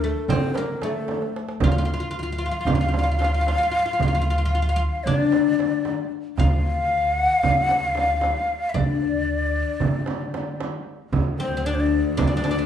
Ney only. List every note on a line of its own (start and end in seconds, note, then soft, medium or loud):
0.02 0.27 A4 medium
0.28 0.56 C5 medium
0.28 0.33 D5 medium
0.55 0.84 A#4 medium
0.82 1.34 A4 medium
1.62 5.05 F5 medium
5.04 5.19 C#5 medium
5.19 6.10 D5 medium
6.37 7.17 F5 loud
7.17 7.39 F#5 loud
7.39 7.63 F5 loud
7.63 7.84 F#5 loud
7.84 8.71 F5 loud
8.69 8.78 E5 medium
8.76 10.60 D5 medium
11.39 11.68 C5 medium
11.66 11.76 D5 medium
11.74 11.82 C5 medium
11.80 12.19 D5 medium
12.20 12.26 E5 medium
12.25 12.66 D5 medium